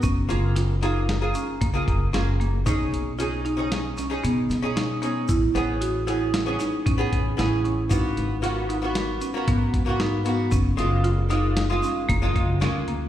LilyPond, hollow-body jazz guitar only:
\new Staff \with { instrumentName = "Hollow-body jazz guitar" } { \time 5/4 \key fis \major \tempo 4 = 114 r8 <ais eis' gis'>8. r16 <ais eis' gis'>8. <ais eis' gis'>8. r16 <ais eis' gis'>8. <ais eis' gis'>8. r16 | <cis' dis' gis'>8. r16 <cis' dis' gis'>8. <cis' dis' gis'>8. r16 <cis' dis' gis'>8. r16 <cis' dis' gis'>8. <cis' dis' gis'>8 | r8 <b cis' gis'>8. r16 <b cis' gis'>8. <b cis' gis'>8. r16 <b cis' gis'>8. <b cis' gis'>8. r16 | <ais b fis'>8. r16 <ais b fis'>8. <ais b fis'>8. r16 <ais b fis'>8. r16 <ais b fis'>8. <ais b fis'>8 |
r8 <gis ais eis'>8. r16 <gis ais eis'>8. <gis ais eis'>8. r16 <gis ais eis'>8. <gis ais eis'>8. r16 | }